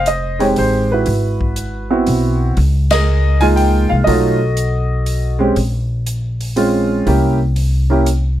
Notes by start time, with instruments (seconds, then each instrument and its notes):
Already playing: upright bass F1, upright piano C5
0.06 upright piano D#5, closed hi-hat
0.39 upright piano G#3 C4 D#4 G4 C#5, open hi-hat
0.56 upright bass A1, upright piano C5, open hi-hat
0.92 upright piano E4 F#4 B4
1.06 upright bass G#1, kick, open hi-hat
1.41 kick
1.56 closed hi-hat
1.91 upright piano B3 C4 E4 F#4
2.07 upright bass B1, open hi-hat
2.57 upright bass C#2, kick, open hi-hat
2.91 upright piano G#4 A#4 D#5, snare, ride
3.40 upright piano G#3 A#3 D#4 F4 G#5, open hi-hat
3.56 upright piano G5, open hi-hat
3.89 upright bass C2, upright piano F5
4.04 upright bass B1, upright piano F#3 A3 D#4 F4 D#5, kick, open hi-hat
4.08 upright piano F#4 A4
4.57 closed hi-hat
5.06 open hi-hat
5.39 upright piano G#3 C4 C#4 G4
5.56 upright bass A#1, kick, open hi-hat
6.06 closed hi-hat
6.41 open hi-hat
6.56 upright piano G#3 C4 C#4 F4, open hi-hat
7.07 upright bass C2, upright piano A#3 C#4 E4 G4, kick, open hi-hat
7.56 open hi-hat
7.90 upright piano A#3 C#4 E4 G4
8.06 closed hi-hat